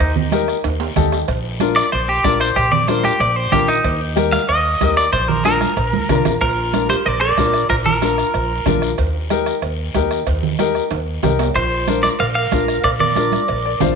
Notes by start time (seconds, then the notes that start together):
Already playing: D#4
0.00 D#2, bombo low, bombo rim, cowbell, long guiro
0.16 low conga
0.32 D#4 G4 A#4, bombo rim, cowbell, high conga, short guiro
0.48 bombo rim, short guiro
0.64 D#2, bombo rim, cowbell, high timbale, long guiro
0.80 low timbale
0.96 D#2 D#4 G4 A4, bombo low, bombo rim, cowbell, high conga, low conga, short guiro
1.12 bombo rim, low timbale, short guiro
1.28 A#1, bombo low, bombo rim, cowbell, long guiro
1.60 D4 F4 A#4, bombo rim, cowbell, high conga, short guiro
1.76 D5, bombo rim, short guiro
1.92 A#1 C5, bombo rim, cowbell, long guiro
2.09 G4
2.24 A#1 D4 F4 A#4 D5, bombo low, bombo rim, cowbell, high conga, low timbale, short guiro
2.40 C5, bombo rim, short guiro
2.56 A#1 G4, bombo low, bombo rim, cowbell, long guiro
2.72 D5, low conga
2.88 D4 F4 A#4 C5, bombo rim, cowbell, high conga, short guiro
3.04 G4, bombo rim, high conga, short guiro
3.20 A#1 D5, bombo rim, cowbell, long guiro
3.36 C5
3.52 A#1 D4 F4 G4 A#4, bombo low, bombo rim, cowbell, high conga, low conga, short guiro
3.68 D#4, bombo rim, short guiro
3.84 D#2, bombo low, bombo rim, cowbell, long guiro
4.16 D#4 G4 A#4, bombo rim, cowbell, high conga, short guiro
4.32 F5, bombo rim, high conga, short guiro
4.49 D#2 D#5, bombo rim, cowbell, long guiro
4.81 D#2 D#4 G4 A#4, bombo low, bombo rim, cowbell, high conga, short guiro
4.97 D5, bombo rim, short guiro
5.13 A#1 C5, bombo low, bombo rim, cowbell, long guiro
5.28 A#4, low conga
5.45 D4 F4 A#4, bombo rim, cowbell, high conga, short guiro
5.61 bombo rim, high conga, short guiro
5.77 A#1, bombo rim, cowbell, long guiro
5.93 D2, high conga
6.09 C2 D4 F4 A#4, bombo low, bombo rim, cowbell, low conga, low timbale, short guiro
6.25 A#1, bombo rim, low conga, short guiro
6.41 A#1 F4 A#4, bombo low, bombo rim, cowbell, long guiro
6.73 D4 F4 A#4, bombo rim, cowbell, high conga, short guiro
6.89 G4 C5, bombo rim, high conga, short guiro
7.05 A#1 A#4 D5, bombo rim, cowbell, long guiro
7.21 A#4 D5
7.38 A#1 D4 F4 A#4, bombo low, bombo rim, cowbell, high conga, low timbale, short guiro
7.54 bombo rim, short guiro
7.69 A#1 F4 A#4, bombo low, bombo rim, cowbell, long guiro
7.85 F4 A#4, low conga
8.02 D4 F4 A#4, bombo rim, cowbell, high conga, short guiro
8.18 bombo rim, short guiro
8.34 A#1, bombo rim, cowbell, long guiro
8.66 A#1 D4 F4 A#4, bombo low, bombo rim, cowbell, high conga, low conga, low timbale, short guiro
8.82 bombo rim, short guiro
8.98 D#2, bombo low, bombo rim, cowbell, long guiro
9.30 D#4 G4 A#4, bombo rim, cowbell, high conga, short guiro
9.46 bombo rim, short guiro
9.62 D#2, bombo rim, cowbell, long guiro
9.95 D#2 D#4 G4 A#4, bombo low, bombo rim, cowbell, high conga, low timbale, short guiro
10.11 bombo rim, short guiro
10.27 D#2, bombo low, bombo rim, cowbell, long guiro
10.43 low conga
10.59 D#4 G4 A#4, bombo rim, cowbell, high conga, short guiro
10.75 bombo rim, short guiro
10.91 D#2, bombo rim, cowbell, high timbale, long guiro
11.23 C2 D#4 G4 A#4, bombo low, bombo rim, cowbell, high conga, low conga, low timbale, short guiro
11.39 bombo rim, low timbale, short guiro
11.55 A#1 F4 C5, bombo low, bombo rim, cowbell, long guiro
11.87 D4 F4 A#4, bombo rim, cowbell, high conga, short guiro
12.03 A#4 D5, bombo rim, high conga, short guiro
12.19 A#1 A#4 F5, bombo rim, cowbell, long guiro
12.35 A#4 F5
12.52 A#1 D4 F4 A#4, bombo low, bombo rim, cowbell, high conga, low timbale, short guiro
12.68 bombo rim, short guiro
12.84 A#1 A#4 D5, bombo low, bombo rim, cowbell, long guiro
13.00 A#4 D5, low conga
13.16 D4 F4 A#4, bombo rim, cowbell, high conga, short guiro
13.32 bombo rim, high conga, short guiro
13.48 A#1, bombo rim, cowbell, long guiro
13.65 D5
13.80 A#1 D4 F4 C5 F5, bombo low, bombo rim, cowbell, high conga, low conga, low timbale, short guiro